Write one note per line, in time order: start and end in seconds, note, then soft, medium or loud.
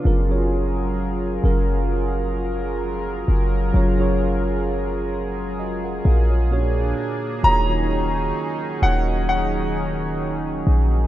0.00 0.22 F#3 medium
0.00 6.47 F4 medium
0.04 1.40 F#1 loud
0.04 6.47 F#3 medium
0.04 0.23 C#4 medium
0.04 0.23 F4 medium
0.04 11.07 G#4 medium
0.04 0.24 G#4 medium
0.04 6.47 A#4 medium
0.04 0.24 A#4 loud
0.28 1.12 F#3 medium
0.28 1.13 C#4 medium
0.28 1.13 F4 medium
0.28 1.13 G#4 medium
0.28 1.14 C#5 medium
1.42 3.24 F#1 loud
1.42 2.77 F#3 medium
1.42 2.77 C#4 medium
1.42 2.78 F4 medium
1.42 2.78 G#4 medium
1.42 2.79 A#4 loud
3.28 3.73 F#1 medium
3.73 6.01 F#1 loud
3.73 3.92 F#3 medium
3.73 3.92 C#4 medium
3.73 3.92 F4 medium
3.73 3.93 G#4 medium
3.73 3.93 C#5 medium
3.98 4.81 F#3 medium
3.98 4.82 C#4 medium
3.98 4.82 F4 medium
3.98 4.83 G#4 medium
3.98 4.83 C#5 loud
5.59 5.83 F#4 medium
5.59 5.83 D#5 medium
5.84 6.05 A#4 medium
5.84 6.04 F#5 medium
6.05 6.94 A#1 loud
6.05 6.29 G#4 medium
6.05 6.29 F5 medium
6.30 6.74 F4 medium
6.30 6.52 C#5 medium
6.50 7.26 A#2 medium
6.50 7.26 A#3 medium
6.50 7.43 A#3 medium
6.50 6.58 C#4 medium
6.50 7.43 D4 medium
6.50 7.27 F#4 medium
6.50 7.27 G#4 medium
6.50 7.28 C#5 loud
6.58 7.30 D4 medium
7.42 8.32 D#1 loud
7.42 7.61 D#3 medium
7.42 11.07 D#3 medium
7.42 11.07 F#3 medium
7.42 7.61 A#3 medium
7.42 11.07 C#4 medium
7.42 11.07 D#4 medium
7.42 7.62 F4 medium
7.42 7.62 F#4 medium
7.42 7.62 G#4 medium
7.42 7.63 C#5 medium
7.42 8.87 A#5 loud
7.67 8.51 D#3 medium
7.67 8.51 A#3 medium
7.67 8.51 F4 medium
7.67 8.52 F#4 medium
7.67 8.52 G#4 medium
7.67 8.52 C#5 medium
8.81 10.63 D#1 loud
8.81 10.15 D#3 medium
8.81 10.16 A#3 medium
8.81 10.16 D#4 medium
8.81 10.16 F#4 medium
8.81 10.17 G#4 medium
8.81 10.17 C#5 medium
8.81 9.25 F#5 medium
9.29 11.07 F#5 medium
10.67 11.07 A#1 loud